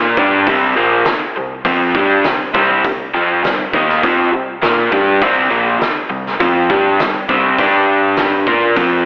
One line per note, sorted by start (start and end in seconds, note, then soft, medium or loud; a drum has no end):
0.00 0.17 A#2 medium
0.00 0.18 A#3 medium
0.00 0.18 F4 medium
0.00 0.18 A#4 medium
0.17 0.46 G2 medium
0.17 0.47 G3 medium
0.17 0.47 D4 medium
0.17 0.47 G4 medium
0.17 kick medium
0.47 0.75 C2 medium
0.47 0.75 C3 medium
0.47 0.76 G3 medium
0.47 0.76 C4 loud
0.47 kick medium
0.47 open hi-hat soft
0.76 1.06 A#1 medium
0.76 1.05 A#2 medium
0.76 1.06 F3 medium
0.76 1.06 A#3 medium
1.05 muted overdriven electric guitar stroke medium
1.05 snare loud
1.05 open hi-hat soft
1.36 1.64 C2 medium
1.36 1.60 C3 medium
1.36 1.60 G3 medium
1.65 1.93 F2 medium
1.65 1.94 F3 medium
1.65 1.95 C4 medium
1.65 1.95 F4 loud
1.65 kick loud
1.65 open hi-hat medium
1.94 2.23 G2 medium
1.94 2.25 G3 medium
1.94 2.25 D4 loud
1.94 2.25 G4 medium
1.94 kick medium
2.24 2.54 C2 medium
2.24 2.50 C3 medium
2.24 2.50 G3 medium
2.24 snare loud
2.24 open hi-hat medium
2.54 2.83 C2 medium
2.54 2.83 C3 medium
2.54 2.84 G3 medium
2.54 2.84 C4 medium
2.54 kick loud
2.85 3.12 C2 medium
2.85 3.09 C3 medium
2.85 3.09 G3 medium
2.85 kick medium
2.85 open hi-hat soft
3.14 3.43 F2 medium
3.14 3.43 F3 medium
3.14 3.43 C4 medium
3.14 3.43 F4 loud
3.43 3.73 C2 medium
3.43 3.67 C3 medium
3.43 3.67 G3 medium
3.43 snare loud
3.43 open hi-hat medium
3.73 4.01 D#2 medium
3.73 4.03 D#3 medium
3.73 4.03 A#3 medium
3.73 4.03 D#4 medium
3.73 kick medium
3.89 snare soft
4.03 4.31 F2 medium
4.03 4.32 F3 medium
4.03 4.32 C4 medium
4.03 4.32 F4 medium
4.03 kick loud
4.03 open hi-hat medium
4.32 4.62 C2 medium
4.32 4.56 C3 medium
4.32 4.56 G3 medium
4.62 4.91 A#2 medium
4.62 4.91 A#3 medium
4.62 4.92 F4 medium
4.62 4.91 A#4 loud
4.62 snare loud
4.62 open hi-hat soft
4.92 5.20 G2 medium
4.92 5.21 G3 medium
4.92 5.21 D4 medium
4.92 5.21 G4 medium
4.92 kick medium
5.22 5.49 C2 medium
5.22 5.50 C3 medium
5.22 5.50 G3 medium
5.22 5.50 C4 medium
5.22 kick loud
5.22 open hi-hat soft
5.50 5.79 A#1 medium
5.50 5.79 A#2 medium
5.50 5.80 F3 medium
5.50 5.80 A#3 medium
5.80 muted overdriven electric guitar stroke soft
5.80 muted fingered electric bass stroke soft
5.80 snare medium
5.80 open hi-hat medium
6.10 6.39 C2 medium
6.10 6.34 C3 medium
6.10 6.34 G3 medium
6.27 snare soft
6.40 6.68 F2 medium
6.40 6.69 F3 medium
6.40 6.69 C4 medium
6.40 6.69 F4 medium
6.40 kick loud
6.40 open hi-hat medium
6.70 6.98 G2 medium
6.70 6.99 G3 medium
6.70 6.99 D4 medium
6.70 6.99 G4 medium
6.70 kick loud
6.99 7.28 C2 medium
6.99 7.24 C3 medium
6.99 7.25 G3 medium
6.99 snare loud
6.99 open hi-hat medium
7.29 7.57 C2 medium
7.29 7.58 C3 medium
7.29 7.57 G3 medium
7.29 7.59 C4 medium
7.29 kick loud
7.58 8.44 G2 medium
7.58 8.47 G3 medium
7.58 8.47 D4 medium
7.58 8.47 G4 medium
7.58 kick medium
7.58 open hi-hat medium
8.17 snare loud
8.17 open hi-hat medium
8.47 8.75 A#2 medium
8.47 8.76 A#3 medium
8.47 8.76 F4 medium
8.47 8.77 A#4 loud
8.47 kick medium
8.76 9.05 F2 medium
8.76 9.05 F3 medium
8.76 9.05 C4 loud
8.76 9.05 F4 loud
8.76 kick loud
8.76 open hi-hat medium